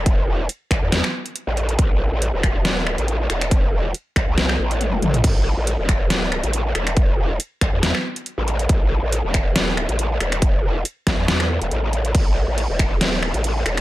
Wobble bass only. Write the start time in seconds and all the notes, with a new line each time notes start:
Already playing: E1
0.71 A1
0.82 E2
1.47 A1
1.79 A1
2.12 A1
2.34 E1
2.79 D#1
2.98 A1
3.30 E1
4.16 A1
4.28 C2
4.59 A1
5.02 A1
5.24 A1
5.57 A1
5.79 E1
6.44 A1
6.75 E1
7.61 A1
7.73 E2
8.38 A1
8.69 A1
9.03 A1
9.24 E1
9.69 D#1
9.89 A1
10.20 E1
11.07 A1
11.18 E2
11.62 E1
11.71 A1
12.15 A1
12.48 A1
12.69 E1
13.14 D#1
13.34 A1
13.66 E1